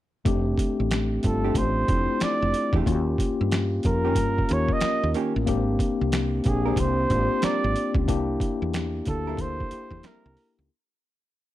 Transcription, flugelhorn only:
1.26 A4
1.58 C5
2.23 D5
3.86 A#4
4.53 C#5
4.73 D#5
6.48 G#4
6.79 C5
7.45 D5
9.09 A4
9.41 C5
10.06 A#4

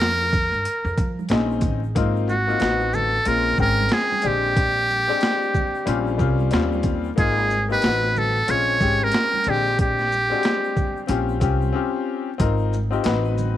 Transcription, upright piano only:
Already playing: G#3 C4 C#4 F4
1.30 G#3 C4 C#4 D#4
1.95 A#3 C4 D#4 F4
2.47 A#3 C4 D#4 F4
2.60 B3 C4 D#4 F#4
3.25 G#3 C4 C#4 F4
3.57 G#3 C4 C#4 G5
4.22 G#3 C4 D4 G4
5.08 G#3 C4 D4 G4
5.86 G3 C4 C#4 F4
6.18 G3 C4 C#4 F4
6.51 G3 C4 C#4 F4
7.16 A#3 C4 D#4 F4
7.68 A#3 C4 D#4 G4
7.82 B3 C4 D#4 F#4
8.47 G#3 C4 C#4 F4
8.80 G#3 C4 C#4 G4
9.46 G#3 C4 D4 G4
10.30 G#3 C4 D4 F#4
10.39 G4
11.07 C4 C#4 F4 G4
11.40 C4 C#4 F4 G4
11.73 C4 C#4 F4 G4
12.38 C4 D#4 F4 A#4
12.91 C4 D#4 F4 G4
13.03 B3 D#4 F#4 B4
13.09 C4

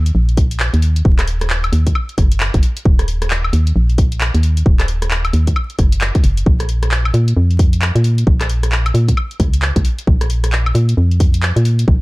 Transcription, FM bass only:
Already playing: D#2
0.15 A#1
0.74 D#2
1.05 D#1
1.73 D#2
2.18 F#1
2.54 F#1
2.85 D#1
3.53 D#2
3.76 A#1
4.35 D#2
4.66 D#1
5.33 D#2
5.79 F#1
6.24 F#1
6.46 A#1
7.14 A#2
7.37 F2
7.95 A#2
8.27 A#1
8.94 A#2
9.40 C#2
9.76 C#2
10.07 A#1
10.75 A#2
10.97 F2
11.56 A#2
11.88 A#1

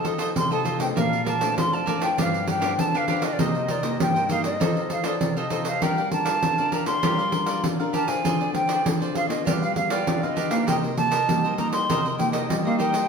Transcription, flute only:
0.37 C6
0.52 A5
0.81 G5
0.98 F5
1.27 A5
1.58 C6
1.74 A5
2.03 G5
2.20 F5
2.49 G5
2.80 A5
2.97 F5
3.24 D#5
3.33 D5
3.40 D#5
3.71 D5
3.84 D#5
4.01 G5
4.31 F5
4.45 D#5
4.92 F5
5.06 D5
5.39 D#5
5.66 F5
5.83 G5
6.12 A5
6.73 A#5
6.86 C6
7.94 A5
8.08 G#5
8.55 G5
9.16 F5
9.30 D#5
9.46 D5
9.62 F5
9.76 F5
9.91 D5
10.23 D#5
10.51 F5
10.69 G5
10.98 A5
11.58 A#5
11.72 C6
12.19 G5
12.33 D#5
12.66 F5
12.80 G5

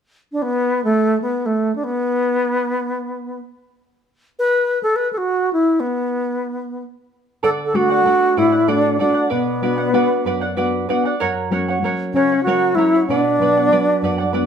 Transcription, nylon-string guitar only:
7.43 D3
7.74 A3 D4 F#4
8.05 A3 D4 F#4
8.37 A2
8.68 A3 D4 F#4
9.01 A3 D4 F#4
9.31 B2
9.62 B3 D4 F#4
9.93 B3 D4 F#4
10.25 F#2
10.56 B3 D4 F#4
10.89 B3 D4 F#4
11.21 F#2
11.51 F#3 A#3 C#4
11.82 F#3 A#3 C#4
12.13 C#3
12.46 F#3 A#3 C#4
12.77 F#3 A#3 C#4
13.09 B2
13.40 F#3 B3 D4
13.70 F#3 B3
14.02 F#2
14.33 F#3 B3 D4

